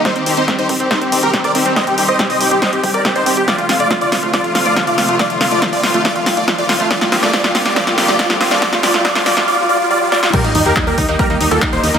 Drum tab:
CC |----------------|----------------|----------------|----------------|
HH |xxoxxxoxxxoxxxox|xxoxxoo-xxoxxxox|xxoxxxo-xxoxxxox|xxoxxooxxxoxxxox|
CP |----------------|----------------|----------------|----------------|
SD |o---o---o---o---|o---o---o---o---|o-o-o-o-o-o-o-o-|o-o-o-o-o-o-o-o-|
BD |o---o-o-o---o---|o---o---o-o-o---|o---o-o-o---o---|o---o---o-o-o---|

CC |----------------|----------------|x---------------|
HH |xxoxxxoxxxo-xxox|xxo-xoo---------|xxoxxxoxxxoxxxox|
CP |----------------|----------------|----x-------x---|
SD |oooooooooooooooo|oooooooo------oo|----------------|
BD |o---o-o-o---o---|o---o-----------|o---o-o-o---o---|